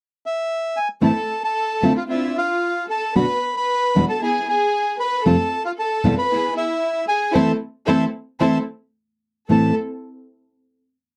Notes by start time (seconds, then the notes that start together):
0.26 E5
0.77 G#5
1.01 A2 E3 A3 C4 E4 A4 A5
1.42 A4 A5
1.82 D3 A3 C4 E4 F4
1.97 F4 F5
2.09 C4 D4 E4 F4 E5
2.37 F4 F5
2.88 A4 A5
3.15 B2 D3 B3 D4 F#4 B4 B5
3.56 B4 B5
3.96 E2 B2 E3 G#3 B3 D4 E4 F#4
4.09 A4 A5
4.22 B3 E4 G#4 G#5
4.48 G#4 G#5
4.99 B4 B5
5.24 F2 C3 F3 A3 C4 F4 A4 A5
5.65 F4 F5
5.78 A4 A5
6.04 E2 B2 E3 G#3 B3 C4 E4 F4 A4
6.17 B4 B5
6.31 B3 E4 G#4
6.55 E4 E5
7.07 G#4 G#5
7.33 E3 A3 C4 E4 A4 C5 E5 A5 C6
7.86 E3 A3 C4 E4 A4 C5 E5 A5 C6
8.40 E3 A3 C4 E4 A4 C5 E5 A5 C6
9.48 A2 E3 A3 C4 E4 A4 A5